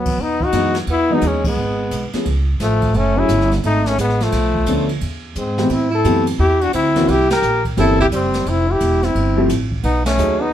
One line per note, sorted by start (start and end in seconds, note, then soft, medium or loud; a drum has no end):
0.00 0.16 D#2 medium
0.00 0.23 F#3 medium
0.00 0.23 B3 medium
0.06 kick medium
0.06 crash medium
0.18 0.52 E2 medium
0.18 0.44 B3 medium
0.18 0.46 D#4 medium
0.18 kick soft
0.41 0.76 D#4 medium
0.41 kick medium
0.45 0.77 F#4 medium
0.52 0.86 F#2 medium
0.52 0.73 E3 medium
0.52 0.73 F#3 medium
0.52 0.73 G#3 medium
0.52 0.73 B3 medium
0.52 0.73 D#4 medium
0.52 kick soft
0.52 hi-hat pedal soft
0.52 ride medium
0.74 snare soft
0.74 ride soft
0.87 1.21 E2 medium
0.87 1.11 B3 medium
0.87 kick soft
0.87 ride medium
0.91 1.16 E4 medium
1.10 1.21 E3 medium
1.10 1.22 F#3 medium
1.10 1.22 G#3 medium
1.10 1.27 B3 medium
1.10 1.22 B3 medium
1.10 1.22 D#4 medium
1.10 1.29 D#4 medium
1.21 1.55 D#2 medium
1.21 1.45 G#3 medium
1.21 kick soft
1.21 hi-hat pedal medium
1.21 ride medium
1.28 1.47 C#4 medium
1.44 2.10 G#3 medium
1.44 kick medium
1.44 crash medium
1.49 2.12 B3 medium
1.56 1.90 G#1 medium
1.91 2.12 B1 medium
1.91 kick soft
1.91 hi-hat pedal medium
1.91 ride medium
2.13 2.25 F3 medium
2.13 2.25 A3 soft
2.13 2.25 B3 medium
2.13 2.25 C#4 medium
2.13 2.25 G#4 medium
2.13 muted upright bass stroke soft
2.13 snare soft
2.13 ride soft
2.25 2.59 C#2 medium
2.25 kick soft
2.25 ride medium
2.60 2.93 A1 medium
2.60 2.96 F3 medium
2.60 2.98 A3 medium
2.60 kick soft
2.60 snare soft
2.60 hi-hat pedal soft
2.60 ride medium
2.82 kick medium
2.82 ride soft
2.94 3.28 F#1 medium
2.94 3.18 A3 medium
2.94 3.20 C#4 medium
2.94 kick soft
2.94 ride medium
3.16 3.27 F#3 medium
3.16 3.28 A3 medium
3.16 3.51 C#4 medium
3.16 3.28 C#4 medium
3.16 3.28 E4 medium
3.16 3.52 E4 loud
3.16 3.28 G#4 medium
3.29 3.62 G1 loud
3.29 kick soft
3.29 hi-hat pedal medium
3.29 ride medium
3.41 snare soft
3.51 snare soft
3.51 ride soft
3.63 3.97 G#1 medium
3.63 3.87 A3 medium
3.63 3.90 D#4 medium
3.63 kick soft
3.63 ride medium
3.86 3.98 A3 medium
3.86 3.99 C#4 loud
3.86 snare medium
3.98 4.32 A1 medium
3.98 4.23 G#3 medium
3.98 4.25 B3 medium
3.98 kick soft
3.98 hi-hat pedal medium
3.98 ride medium
4.10 snare soft
4.20 4.90 F3 medium
4.20 4.91 A3 medium
4.20 snare soft
4.20 ride soft
4.32 4.66 B1 medium
4.32 kick soft
4.32 snare soft
4.32 ride medium
4.55 kick medium
4.66 5.00 D2 medium
4.66 4.87 F3 medium
4.66 4.87 B3 medium
4.66 4.87 C#4 medium
4.66 4.88 D4 medium
4.66 4.87 A4 medium
4.66 kick soft
4.66 hi-hat pedal soft
4.66 ride medium
4.89 ride soft
5.01 5.35 E2 medium
5.01 kick soft
5.01 ride medium
5.35 5.69 G#2 medium
5.35 5.71 G#3 medium
5.35 5.74 C4 medium
5.35 kick soft
5.35 hi-hat pedal soft
5.35 ride medium
5.58 5.69 E3 medium
5.58 5.69 A3 medium
5.58 5.70 B3 medium
5.58 5.70 C4 medium
5.58 5.70 G4 medium
5.58 snare medium
5.69 6.04 A2 medium
5.69 5.90 C4 medium
5.69 5.94 E4 medium
5.69 kick soft
5.69 ride medium
5.91 6.24 E4 medium
5.91 6.26 A4 medium
6.04 6.38 F#2 medium
6.04 6.25 E3 medium
6.04 6.25 A3 medium
6.04 6.25 B3 medium
6.04 6.25 C4 medium
6.04 6.25 G4 medium
6.04 kick soft
6.04 hi-hat pedal soft
6.04 ride medium
6.27 ride medium
6.39 6.73 E2 medium
6.39 6.63 E4 medium
6.39 6.64 G4 loud
6.39 kick soft
6.61 6.73 D4 medium
6.61 6.74 F#4 medium
6.61 ride medium
6.73 7.07 D2 medium
6.73 7.09 C4 medium
6.73 7.11 E4 medium
6.73 kick soft
6.73 hi-hat pedal medium
6.73 ride medium
6.95 7.07 E3 medium
6.95 7.07 A#3 medium
6.95 7.07 C4 medium
6.95 7.07 C#4 medium
6.95 7.08 F#4 medium
6.95 snare soft
6.95 ride medium
7.07 7.42 C2 medium
7.07 7.30 E4 medium
7.07 7.31 G4 loud
7.07 kick soft
7.07 ride medium
7.30 7.62 G4 medium
7.30 7.64 A#4 loud
7.30 snare medium
7.30 ride medium
7.42 7.76 A#1 medium
7.42 hi-hat pedal soft
7.65 kick soft
7.65 ride soft
7.77 8.11 G1 medium
7.77 7.97 E3 medium
7.77 7.97 A#3 medium
7.77 7.97 C4 medium
7.77 7.97 C#4 medium
7.77 7.99 E4 medium
7.77 7.97 G4 medium
7.77 7.99 A4 medium
7.77 kick soft
7.77 snare soft
7.77 ride medium
8.00 8.06 E4 medium
8.00 8.07 G4 medium
8.00 kick medium
8.12 8.45 F#1 medium
8.12 8.49 G3 medium
8.12 8.50 C4 medium
8.12 kick soft
8.12 hi-hat pedal medium
8.12 ride medium
8.33 snare soft
8.33 ride soft
8.46 8.79 F1 medium
8.46 8.70 C4 medium
8.46 8.73 E4 medium
8.46 kick soft
8.46 ride medium
8.68 9.05 E4 medium
8.68 9.06 G4 medium
8.80 9.14 E1 loud
8.80 kick soft
8.80 hi-hat pedal soft
8.80 ride medium
9.02 9.43 C4 medium
9.02 9.44 E4 medium
9.02 snare soft
9.02 ride soft
9.15 9.49 G1 loud
9.15 kick soft
9.15 ride medium
9.37 9.48 F3 medium
9.37 9.48 A3 medium
9.37 9.48 C4 medium
9.37 9.48 E4 medium
9.37 9.48 G4 medium
9.49 9.83 A1 medium
9.49 kick soft
9.49 hi-hat pedal medium
9.49 ride medium
9.72 kick soft
9.83 10.17 B1 medium
9.83 10.04 B3 medium
9.83 10.05 D#4 medium
9.83 kick soft
9.83 ride medium
10.05 10.41 A3 medium
10.05 10.44 C#4 medium
10.05 snare medium
10.05 ride medium
10.18 10.51 D#2 medium
10.18 10.38 F#3 medium
10.18 10.39 A3 medium
10.18 10.39 C#4 medium
10.18 10.39 D#4 medium
10.18 10.39 G#4 medium
10.18 hi-hat pedal medium
10.40 10.52 B3 medium
10.40 10.53 D#4 medium